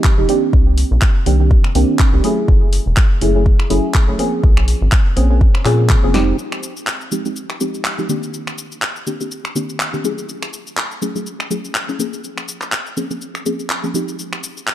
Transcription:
Already playing: synth stab F3 G#3 C4 D#4 G4
0.04 kick, clap
0.18 analog synth bass F1, synth stab F3 G#3 C4 D#4 G4
0.28 synth stab D#3 A#3 C4 D4 G4, open hi-hat
0.53 analog synth bass C2, kick
0.78 open hi-hat
0.91 analog synth bass A#1
1.01 kick, clap
1.26 analog synth bass C2, synth stab D#3 A#3 C4 D4 G4, open hi-hat
1.40 synth stab D#3 A#3 C4 D4 G4
1.51 kick
1.64 finger snap
1.75 analog synth bass C2, synth stab D#3 A#3 C4 D4 G4, open hi-hat
1.99 kick, clap
2.13 analog synth bass C2, synth stab D#3 A#3 C4 D4 G4
2.23 synth stab F#3 A3 C#4 E4 G#4, open hi-hat
2.48 analog synth bass F#1, kick
2.73 open hi-hat
2.86 analog synth bass E1
2.97 kick, clap
3.21 analog synth bass F#1, synth stab F#3 A3 C#4 E4 G#4, open hi-hat
3.35 synth stab F#3 A3 C#4 E4 G#4
3.46 kick
3.60 finger snap
3.70 analog synth bass F#1, synth stab F#3 A3 C#4 E4 G#4, open hi-hat
3.94 kick, clap
4.08 analog synth bass F#1, synth stab F#3 A3 C#4 E4 G#4
4.18 synth stab F3 A#3 C4 C#4 G#4, open hi-hat
4.44 analog synth bass A#1, kick
4.57 finger snap
4.68 open hi-hat
4.81 analog synth bass G#1
4.92 kick, clap
5.16 analog synth bass A#1, synth stab F3 A#3 C4 C#4 G#4, open hi-hat
5.30 synth stab F3 A#3 C4 C#4 G#4
5.41 kick
5.55 finger snap
5.65 analog synth bass A#2, synth stab F3 A#3 C4 C#4 G#4, clap, open hi-hat
5.89 kick, clap
6.03 analog synth bass F1, synth stab F3 A#3 C4 C#4 G#4
6.14 synth stab F3 G#3 C4 D#4 G4, snare, open hi-hat
6.39 cabasa
6.52 finger snap, cabasa
6.63 cabasa
6.77 cabasa
6.87 clap, cabasa
7.01 cabasa
7.11 synth stab F3 G#3 C4 D#4 G4, cabasa
7.25 synth stab F3 G#3 C4 D#4 G4, cabasa
7.36 cabasa
7.50 finger snap, cabasa
7.60 synth stab F3 G#3 C4 D#4 G4, cabasa
7.74 cabasa
7.84 clap, cabasa
7.98 synth stab F3 G#3 C4 D#4 G4, cabasa
8.09 synth stab D#3 A#3 C4 D4 G4, cabasa
8.23 cabasa
8.34 cabasa
8.47 finger snap, cabasa
8.58 cabasa
8.72 cabasa
8.82 clap, cabasa
8.96 cabasa
9.06 synth stab D#3 A#3 C4 D4 G4, cabasa
9.20 synth stab D#3 A#3 C4 D4 G4, cabasa
9.31 cabasa
9.45 finger snap, cabasa
9.55 synth stab D#3 A#3 C4 D4 G4, cabasa
9.69 cabasa
9.80 clap, cabasa
9.93 synth stab D#3 A#3 C4 D4 G4, cabasa
10.04 synth stab F#3 A3 C#4 E4 G#4, cabasa
10.18 cabasa
10.29 cabasa
10.43 finger snap, cabasa
10.53 cabasa
10.67 cabasa
10.77 clap, cabasa
10.91 cabasa
11.02 synth stab F#3 A3 C#4 E4 G#4, cabasa
11.15 synth stab F#3 A3 C#4 E4 G#4, cabasa
11.27 cabasa
11.40 finger snap, cabasa
11.50 synth stab F#3 A3 C#4 E4 G#4, cabasa
11.65 cabasa
11.75 clap, cabasa
11.89 synth stab F#3 A3 C#4 E4 G#4, cabasa
11.99 synth stab F3 A#3 C4 C#4 G#4, cabasa
12.13 cabasa
12.24 cabasa
12.38 finger snap, cabasa
12.48 cabasa
12.61 clap, cabasa
12.72 clap, cabasa
12.86 cabasa
12.97 synth stab F3 A#3 C4 C#4 G#4, cabasa
13.10 synth stab F3 A#3 C4 C#4 G#4, cabasa
13.21 cabasa
13.35 finger snap, cabasa
13.45 synth stab F3 A#3 C4 C#4 G#4, cabasa
13.60 cabasa
13.70 clap, cabasa
13.84 synth stab F3 A#3 C4 C#4 G#4, cabasa
13.94 synth stab F3 G#3 C4 D#4 G4, cabasa
14.08 cabasa
14.19 cabasa
14.33 finger snap, cabasa
14.43 cabasa
14.57 cabasa
14.67 clap, cabasa

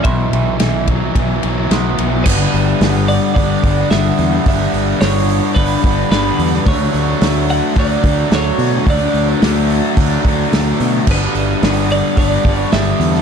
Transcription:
Already playing: overdriven electric guitar E3, distorted electric guitar E3 E4
0.04 fingered electric bass B1, distorted electric guitar B2, clean electric guitar E5, kick, ride
0.33 fingered electric bass B1, overdriven electric guitar E3, ride
0.60 fingered electric bass B1, distorted electric guitar E3, snare, ride
0.88 distorted electric guitar F#3, kick, ride
1.15 fingered electric bass B1, overdriven electric guitar E3, distorted electric guitar B3, kick, ride
1.42 fingered electric bass B1, overdriven electric guitar F#3, distorted electric guitar E4, ride
1.70 fingered electric bass B1, distorted electric guitar F#3, overdriven electric guitar B3, snare, ride
1.97 fingered electric bass B1, overdriven electric guitar E3, distorted electric guitar B3, ride
2.24 fingered electric bass G1, distorted electric guitar G2 D3 G3, clean electric guitar B4, kick, crash
2.28 overdriven electric guitar B3 D4
2.54 fingered electric bass G1, open hi-hat
2.80 fingered electric bass G1, distorted electric guitar G2 D3 G3, snare, open hi-hat
3.08 clean electric guitar D5, open hi-hat
3.34 fingered electric bass G1, distorted electric guitar G2 D3, overdriven electric guitar B3 D4, clean electric guitar D5, kick, open hi-hat
3.38 distorted electric guitar G3
3.63 fingered electric bass G1, distorted electric guitar D3 G3, kick, open hi-hat
3.90 fingered electric bass G1, distorted electric guitar G2 D3 G3, clean electric guitar E5, snare, open hi-hat
4.18 fingered electric bass E2, open hi-hat
4.44 fingered electric bass G1, distorted electric guitar G2 D3 G3, overdriven electric guitar B3, kick, open hi-hat
4.48 overdriven electric guitar D4, clean electric guitar E5
4.74 fingered electric bass G1, open hi-hat
5.00 fingered electric bass G1, distorted electric guitar G2 D3 G3, clean electric guitar C#5, snare, open hi-hat
5.29 open hi-hat
5.55 fingered electric bass G1, distorted electric guitar G2 D3 G3, clean electric guitar B4, kick, open hi-hat
5.59 overdriven electric guitar B3 D4
5.82 fingered electric bass G1, distorted electric guitar D3 G3, kick, open hi-hat
6.09 fingered electric bass G1, distorted electric guitar G2 D3 G3, clean electric guitar B4, snare, open hi-hat
6.39 fingered electric bass E2, open hi-hat
6.54 snare
6.64 fingered electric bass D2, distorted electric guitar D3 A3 D4, overdriven electric guitar F#3, kick, open hi-hat
6.68 clean electric guitar C#5
6.94 fingered electric bass D2, open hi-hat
7.20 fingered electric bass D2, distorted electric guitar D3 A3 D4, snare, open hi-hat
7.49 clean electric guitar F#5, open hi-hat
7.75 fingered electric bass D2, distorted electric guitar D3 A3 D4, overdriven electric guitar F#3, kick, open hi-hat
7.79 clean electric guitar D5
8.02 fingered electric bass D2, distorted electric guitar A3 D4, kick, open hi-hat
8.29 fingered electric bass D2, distorted electric guitar D3 A3 D4, snare, open hi-hat
8.35 clean electric guitar C#5
8.58 fingered electric bass B2, open hi-hat
8.84 fingered electric bass D2, distorted electric guitar D3 A3 D4, overdriven electric guitar F#3, kick, open hi-hat
8.90 clean electric guitar D5
9.14 fingered electric bass D2, open hi-hat
9.40 fingered electric bass D2, distorted electric guitar D3 A3 D4, snare, open hi-hat
9.70 open hi-hat
9.96 fingered electric bass D2, distorted electric guitar D3 A3 D4, overdriven electric guitar F#3, kick, open hi-hat
10.23 fingered electric bass D2, distorted electric guitar A3 D4, kick, open hi-hat
10.52 fingered electric bass D2, distorted electric guitar D3 A3 D4, snare, open hi-hat
10.80 fingered electric bass B2, open hi-hat
11.06 fingered electric bass G1, distorted electric guitar G2 D3 G3, overdriven electric guitar B3 D4, kick, crash
11.11 clean electric guitar B4
11.35 fingered electric bass G1, open hi-hat
11.62 fingered electric bass G1, distorted electric guitar G2 D3 G3, snare, open hi-hat
11.90 clean electric guitar D5, open hi-hat
12.16 fingered electric bass G1, distorted electric guitar G2 D3 G3, overdriven electric guitar B3 D4, clean electric guitar D5, kick, open hi-hat
12.45 fingered electric bass G1, distorted electric guitar D3 G3, kick, open hi-hat
12.59 clean electric guitar C#5
12.71 fingered electric bass G1, distorted electric guitar G2 D3 G3, clean electric guitar E5, snare, open hi-hat
13.00 fingered electric bass E2, open hi-hat
13.15 snare

